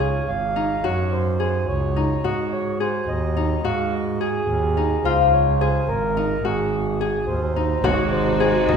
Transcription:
Already playing: double bass C#2, harp D#4 F4, accordion C#5
0.00 harp G#4
0.28 double bass G#1, accordion F5
0.56 harp D#4
0.84 double bass F#2, harp F#4, accordion C#5
1.12 accordion C5
1.40 harp G#4, accordion C5
1.68 double bass C#2, accordion C#5
1.96 harp D#4
2.24 double bass G#2, harp F#4, accordion D#5
2.52 accordion C#5
2.80 harp G#4, accordion C5
3.08 double bass D#2, accordion D#5
3.37 harp D#4
3.65 double bass G#2, harp F#4, accordion F5
3.93 accordion D#5
4.21 harp G#4, accordion G#4
4.49 double bass D#2
4.77 harp D#4
5.04 double bass C#2, harp F4, accordion C5
5.33 accordion C#5
5.60 harp G#4, accordion C5
5.88 double bass G#1, accordion A#4
6.17 harp D#4
6.44 double bass G#1, harp F#4, accordion G#4
7.00 accordion G#4, harp G#4
7.27 double bass D#2, accordion C5
7.56 harp D#4
7.82 double bass G#1, string section C3 G#3 F#4, french horn D#4, harp F#4, accordion C#5, frame drum
8.11 accordion C5
8.40 harp G#4, celesta C5, frame drum
8.67 double bass D#2, accordion D#5, frame drum

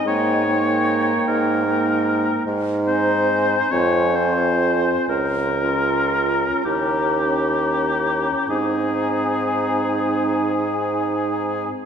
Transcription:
0.06 bassoon G#2, french horn A#3, clarinet D#4, oboe C#5, flute G5
0.47 french horn A#3, clarinet D#4, flute G5
1.27 bassoon G#2, oboe A#4
1.66 french horn A#3, clarinet D#4, flute G5
2.47 bassoon G#2
2.87 french horn C4, clarinet D#4, oboe C5, flute G#5
3.71 bassoon F2, french horn C4, clarinet F4, oboe C#5, flute G#5
4.15 french horn C4, clarinet F4, oboe C5, flute G#5
5.09 bassoon C#2, oboe A#4
5.56 french horn C#4, clarinet F4, flute A#5
6.65 bassoon D#2, french horn C#4, clarinet E4, oboe G4, flute A#5
7.26 french horn C#4, clarinet E4, flute A#5
8.48 bassoon G#2, french horn C4, clarinet D#4, oboe G#4, flute G#5

